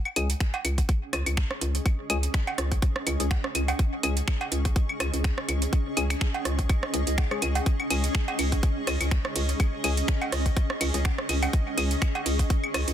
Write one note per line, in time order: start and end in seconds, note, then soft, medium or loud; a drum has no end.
0.00 12.94 C#4 medium
0.05 claves medium
0.13 0.34 C#2 loud
0.13 0.28 G#3 medium
0.13 0.28 C#4 medium
0.13 12.94 G#4 medium
0.13 0.28 G#4 medium
0.13 closed hi-hat medium
0.13 claves medium
0.30 closed hi-hat medium
0.40 finger snap medium
0.40 kick loud
0.40 closed hi-hat soft
0.49 12.94 D#5 medium
0.54 12.94 C#6 medium
0.54 cowbell loud
0.54 claves medium
0.65 0.83 C#2 medium
0.65 closed hi-hat medium
0.65 claves medium
0.78 kick medium
0.78 closed hi-hat medium
0.89 kick loud
0.89 closed hi-hat soft
1.13 1.23 C#2 loud
1.13 cross-stick medium
1.13 closed hi-hat medium
1.13 claves medium
1.26 1.43 C#2 medium
1.26 closed hi-hat medium
1.26 claves medium
1.37 finger snap loud
1.37 kick loud
1.37 closed hi-hat soft
1.51 cross-stick medium
1.61 1.80 C#2 medium
1.61 closed hi-hat loud
1.75 closed hi-hat medium
1.86 kick loud
1.86 closed hi-hat soft
1.86 claves medium
2.10 2.28 C#2 loud
2.10 2.17 G#3 medium
2.10 2.17 C#4 medium
2.10 2.17 G#4 loud
2.10 closed hi-hat loud
2.10 claves medium
2.23 closed hi-hat medium
2.34 finger snap loud
2.34 kick loud
2.34 closed hi-hat soft
2.47 cowbell loud
2.47 claves medium
2.58 2.76 C#2 medium
2.58 cross-stick medium
2.58 closed hi-hat loud
2.72 kick medium
2.72 closed hi-hat medium
2.82 kick loud
2.82 closed hi-hat soft
2.96 cross-stick medium
3.07 3.16 C#2 loud
3.07 closed hi-hat loud
3.07 claves medium
3.20 3.37 C#2 medium
3.20 3.26 G#3 medium
3.20 3.26 C#4 medium
3.20 3.26 G#4 medium
3.20 closed hi-hat medium
3.31 finger snap loud
3.31 kick loud
3.31 closed hi-hat soft
3.31 cowbell medium
3.44 cross-stick medium
3.55 3.73 C#2 medium
3.55 closed hi-hat loud
3.55 claves medium
3.68 closed hi-hat medium
3.68 cowbell medium
3.68 claves medium
3.79 kick loud
3.79 closed hi-hat soft
4.03 4.21 C#2 loud
4.03 4.15 G#3 medium
4.03 4.15 C#4 medium
4.03 4.15 G#4 medium
4.03 closed hi-hat loud
4.03 claves medium
4.17 closed hi-hat medium
4.28 finger snap medium
4.28 kick loud
4.28 closed hi-hat soft
4.28 claves medium
4.41 cowbell medium
4.41 claves medium
4.52 4.70 C#2 medium
4.52 closed hi-hat loud
4.65 kick medium
4.65 closed hi-hat medium
4.76 kick loud
4.76 closed hi-hat soft
4.89 claves medium
5.00 5.10 C#2 loud
5.00 cross-stick medium
5.00 closed hi-hat loud
5.00 claves medium
5.13 5.30 C#2 medium
5.13 closed hi-hat medium
5.24 finger snap loud
5.24 kick loud
5.24 closed hi-hat soft
5.38 cross-stick medium
5.48 5.67 C#2 medium
5.48 closed hi-hat loud
5.48 claves medium
5.62 closed hi-hat medium
5.73 kick loud
5.73 closed hi-hat soft
5.97 6.15 C#2 loud
5.97 6.04 G#3 medium
5.97 6.04 C#4 medium
5.97 6.04 G#4 loud
5.97 closed hi-hat loud
5.97 claves medium
6.10 finger snap medium
6.10 closed hi-hat medium
6.10 claves medium
6.21 finger snap medium
6.21 kick loud
6.21 closed hi-hat soft
6.34 cowbell medium
6.45 6.63 C#2 medium
6.45 cross-stick medium
6.45 closed hi-hat loud
6.59 kick medium
6.59 closed hi-hat medium
6.69 kick loud
6.69 closed hi-hat soft
6.69 claves medium
6.83 cross-stick medium
6.94 7.03 C#2 loud
6.94 7.01 G#3 medium
6.94 7.01 C#4 medium
6.94 7.01 G#4 medium
6.94 closed hi-hat loud
7.07 7.24 C#2 medium
7.07 closed hi-hat medium
7.18 finger snap medium
7.18 kick loud
7.18 closed hi-hat soft
7.18 cowbell medium
7.31 7.41 G#3 loud
7.31 7.41 C#4 medium
7.31 7.41 G#4 loud
7.31 cross-stick medium
7.31 claves medium
7.42 7.60 C#2 loud
7.42 closed hi-hat loud
7.42 claves medium
7.55 closed hi-hat soft
7.55 cowbell medium
7.66 kick loud
7.66 closed hi-hat soft
7.80 claves medium
7.90 8.09 C#2 loud
7.90 8.02 G#3 medium
7.90 8.02 C#4 medium
7.90 8.02 G#4 medium
7.90 closed hi-hat medium
7.90 ride medium
7.90 claves medium
8.04 closed hi-hat medium
8.15 finger snap medium
8.15 kick loud
8.15 closed hi-hat soft
8.28 cowbell medium
8.28 claves medium
8.39 8.57 C#2 medium
8.39 closed hi-hat medium
8.39 ride medium
8.39 claves medium
8.52 kick medium
8.52 closed hi-hat medium
8.63 kick loud
8.63 closed hi-hat soft
8.87 8.97 C#2 loud
8.87 cross-stick medium
8.87 closed hi-hat loud
8.87 ride medium
8.87 claves medium
9.01 9.17 C#2 medium
9.01 closed hi-hat medium
9.01 claves medium
9.11 finger snap medium
9.11 kick loud
9.11 closed hi-hat soft
9.25 cross-stick medium
9.36 9.54 C#2 medium
9.36 closed hi-hat medium
9.36 ride medium
9.49 closed hi-hat medium
9.60 kick loud
9.60 closed hi-hat soft
9.60 claves medium
9.84 10.02 C#2 loud
9.84 9.92 G#3 medium
9.84 9.92 C#4 medium
9.84 9.92 G#4 loud
9.84 closed hi-hat medium
9.84 ride medium
9.84 claves medium
9.97 closed hi-hat medium
10.08 finger snap medium
10.08 kick loud
10.08 closed hi-hat soft
10.22 cowbell medium
10.22 claves medium
10.32 10.50 C#2 medium
10.32 cross-stick medium
10.32 closed hi-hat medium
10.32 ride medium
10.46 kick medium
10.46 closed hi-hat medium
10.57 kick loud
10.57 closed hi-hat soft
10.70 cross-stick medium
10.81 10.90 C#2 loud
10.81 closed hi-hat medium
10.81 ride medium
10.81 claves medium
10.94 11.11 C#2 medium
10.94 11.00 G#3 medium
10.94 11.00 C#4 medium
10.94 11.00 G#4 medium
10.94 closed hi-hat medium
11.05 finger snap medium
11.05 kick loud
11.05 closed hi-hat soft
11.05 cowbell medium
11.18 cross-stick medium
11.29 11.47 C#2 medium
11.29 closed hi-hat medium
11.29 ride medium
11.29 claves medium
11.43 closed hi-hat medium
11.43 cowbell medium
11.43 claves medium
11.53 kick loud
11.53 closed hi-hat soft
11.78 11.96 C#2 loud
11.78 11.90 G#3 medium
11.78 11.90 C#4 medium
11.78 11.90 G#4 medium
11.78 closed hi-hat medium
11.78 ride medium
11.78 claves medium
11.91 closed hi-hat medium
12.02 finger snap medium
12.02 kick loud
12.02 closed hi-hat soft
12.02 claves medium
12.15 cowbell medium
12.15 claves soft
12.26 12.44 C#2 medium
12.26 closed hi-hat medium
12.26 ride medium
12.39 kick medium
12.39 closed hi-hat medium
12.50 kick loud
12.50 closed hi-hat soft
12.64 claves medium
12.74 12.84 C#2 loud
12.74 cross-stick medium
12.74 closed hi-hat medium
12.74 ride medium
12.74 claves medium
12.88 12.94 C#2 medium
12.88 closed hi-hat medium